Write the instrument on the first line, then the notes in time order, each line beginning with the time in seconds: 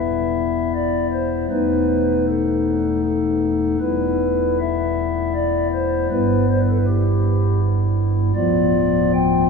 pipe organ
Already playing: E1 E2 G3 B3 E4 E5
0.74 D5
1.12 C5
1.51 E1 E2 A3 B3 D#4 B4
2.28 A4
3.03 A4
3.80 E1 E2 G3 B3 E4 B4
4.60 E5
5.35 D5
5.73 C5
6.11 G1 G2 G3 B3 E4 B4
6.51 C5
6.60 B4
6.69 A4
6.78 B4
6.87 G4
8.35 D1 D2 F3 B3 F4 D5
9.14 G5